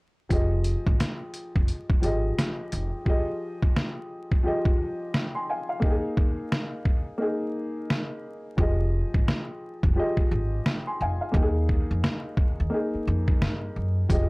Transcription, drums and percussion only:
0.30 kick loud
0.30 closed hi-hat medium
0.64 closed hi-hat medium
0.87 kick medium
1.00 cross-stick medium
1.00 snare loud
1.00 closed hi-hat loud
1.34 closed hi-hat medium
1.56 kick medium
1.68 closed hi-hat medium
1.90 kick medium
2.03 closed hi-hat medium
2.38 cross-stick medium
2.38 snare loud
2.38 closed hi-hat medium
2.72 closed hi-hat medium
3.06 kick loud
3.62 kick medium
3.76 cross-stick medium
3.76 snare loud
4.31 kick medium
4.65 kick loud
5.14 cross-stick loud
5.14 snare loud
5.82 kick loud
6.17 kick medium
6.52 cross-stick medium
6.52 snare loud
6.85 kick medium
7.90 cross-stick medium
7.90 snare loud
8.58 kick loud
9.14 kick medium
9.28 cross-stick medium
9.28 snare loud
9.83 kick medium
10.17 kick medium
10.66 cross-stick loud
10.66 snare loud
11.34 kick loud
11.69 kick loud
12.04 cross-stick medium
12.04 snare loud
12.37 kick medium
13.28 kick medium
13.42 cross-stick loud
13.42 snare loud
14.10 kick loud
14.10 closed hi-hat medium

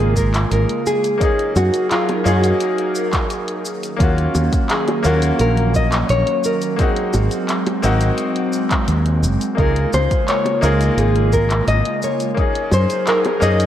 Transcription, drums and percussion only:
0.00 closed hi-hat soft
0.16 kick medium
0.16 shaker medium
0.34 clap medium
0.34 closed hi-hat soft
0.34 shaker soft
0.52 closed hi-hat medium
0.52 shaker soft
0.69 closed hi-hat soft
0.87 shaker medium
1.04 closed hi-hat soft
1.04 shaker soft
1.21 kick loud
1.21 closed hi-hat medium
1.21 shaker soft
1.39 closed hi-hat soft
1.56 high bongo medium
1.56 shaker medium
1.74 closed hi-hat soft
1.74 shaker soft
1.91 clap medium
1.91 closed hi-hat soft
1.91 shaker soft
2.09 closed hi-hat soft
2.09 high bongo medium
2.26 shaker medium
2.44 closed hi-hat soft
2.44 shaker soft
2.60 closed hi-hat medium
2.60 shaker soft
2.78 closed hi-hat soft
2.95 shaker medium
3.13 kick medium
3.13 clap medium
3.13 closed hi-hat soft
3.13 shaker soft
3.30 closed hi-hat medium
3.30 shaker soft
3.48 closed hi-hat soft
3.65 shaker medium
3.83 closed hi-hat soft
3.83 shaker soft
4.00 kick loud
4.00 closed hi-hat medium
4.00 shaker soft
4.18 closed hi-hat soft
4.35 high bongo medium
4.35 shaker medium
4.53 kick loud
4.53 closed hi-hat soft
4.53 shaker soft
4.70 clap medium
4.70 closed hi-hat soft
4.70 shaker soft
4.88 closed hi-hat soft
4.88 high bongo medium
5.04 shaker medium
5.22 closed hi-hat soft
5.22 shaker soft
5.39 closed hi-hat medium
5.39 shaker soft
5.57 closed hi-hat soft
5.74 kick medium
5.74 shaker medium
5.92 clap medium
5.92 closed hi-hat soft
5.92 shaker soft
6.09 closed hi-hat medium
6.09 shaker soft
6.27 closed hi-hat soft
6.44 shaker medium
6.61 closed hi-hat soft
6.61 shaker soft
6.79 kick loud
6.79 closed hi-hat soft
6.79 shaker soft
6.96 closed hi-hat soft
7.13 high bongo medium
7.13 shaker medium
7.31 closed hi-hat soft
7.31 shaker soft
7.49 clap medium
7.49 closed hi-hat medium
7.49 shaker soft
7.66 closed hi-hat soft
7.66 high bongo medium
7.83 shaker medium
8.01 closed hi-hat soft
8.01 shaker soft
8.18 closed hi-hat medium
8.18 shaker soft
8.36 closed hi-hat soft
8.53 shaker medium
8.71 kick loud
8.71 clap medium
8.71 closed hi-hat soft
8.71 shaker soft
8.88 closed hi-hat soft
8.88 shaker soft
9.06 closed hi-hat soft
9.23 shaker medium
9.41 closed hi-hat soft
9.41 shaker soft
9.58 kick loud
9.58 closed hi-hat medium
9.58 shaker soft
9.76 closed hi-hat soft
9.93 high bongo medium
9.93 shaker medium
10.11 kick loud
10.11 closed hi-hat soft
10.11 shaker soft
10.28 clap medium
10.28 closed hi-hat soft
10.28 shaker soft
10.45 closed hi-hat soft
10.45 high bongo medium
10.63 shaker medium
10.81 closed hi-hat soft
10.81 shaker soft
10.98 closed hi-hat soft
10.98 shaker soft
11.16 closed hi-hat soft
11.33 kick medium
11.33 shaker medium
11.50 clap medium
11.50 closed hi-hat soft
11.50 shaker soft
11.68 closed hi-hat soft
11.68 shaker soft
11.85 closed hi-hat soft
12.02 shaker medium
12.20 closed hi-hat soft
12.20 shaker soft
12.37 kick loud
12.37 closed hi-hat medium
12.37 shaker soft
12.55 closed hi-hat soft
12.71 high bongo medium
12.71 shaker medium
12.90 closed hi-hat soft
12.90 shaker soft
13.07 clap medium
13.07 closed hi-hat medium
13.07 shaker soft
13.25 closed hi-hat soft
13.25 high bongo medium
13.42 shaker medium
13.60 closed hi-hat soft
13.60 shaker soft

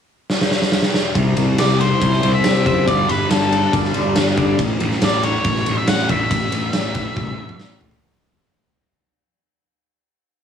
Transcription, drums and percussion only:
0.29 snare medium
0.41 snare medium
0.51 snare medium
0.62 snare medium
0.72 snare medium
0.82 snare medium
0.94 snare medium
1.15 kick loud
1.15 ride medium
1.37 ride medium
1.58 snare loud
1.58 ride loud
1.81 ride medium
2.02 kick loud
2.02 ride medium
2.12 snare soft
2.23 ride medium
2.44 snare loud
2.44 ride medium
2.66 kick medium
2.66 ride medium
2.88 kick loud
2.88 ride medium
3.09 ride medium
3.31 snare loud
3.31 ride medium
3.53 ride medium
3.73 kick medium
3.73 ride medium
3.85 snare soft
3.94 ride medium
4.16 snare loud
4.16 ride medium
4.37 kick medium
4.37 ride medium
4.59 kick loud
4.59 ride medium
4.80 ride medium
4.91 snare soft
5.02 snare loud
5.02 ride medium
5.23 ride medium
5.44 kick loud
5.44 ride medium
5.56 snare soft
5.66 ride medium
5.87 snare loud
5.87 ride loud
6.09 kick medium
6.09 ride medium
6.31 kick loud
6.31 ride loud
6.52 ride medium
6.73 snare loud
6.73 ride medium
6.95 kick medium
6.95 ride medium
7.16 kick medium
7.16 high tom medium
7.27 high tom medium
7.49 mid tom medium
7.59 snare medium
7.81 floor tom medium
7.91 floor tom medium

